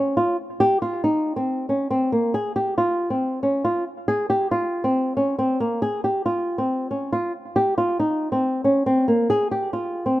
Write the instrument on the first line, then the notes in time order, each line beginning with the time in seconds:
nylon-string guitar
Already playing: C#4
0.17 F4
0.60 G4
0.82 F4
1.04 D#4
1.36 C4
1.69 C#4
1.91 C4
2.12 A#3
2.34 G#4
2.56 G4
2.78 F4
3.10 C4
3.43 C#4
3.65 F4
4.08 G#4
4.30 G4
4.51 F4
4.84 C4
5.17 C#4
5.39 C4
5.60 A#3
5.82 G#4
6.04 G4
6.26 F4
6.58 C4
6.91 C#4
7.12 F4
7.56 G4
7.78 F4
7.99 D#4
8.32 C4
8.64 C#4
8.86 C4
9.08 A#3
9.30 G#4
9.51 G4
9.73 F4
10.06 C4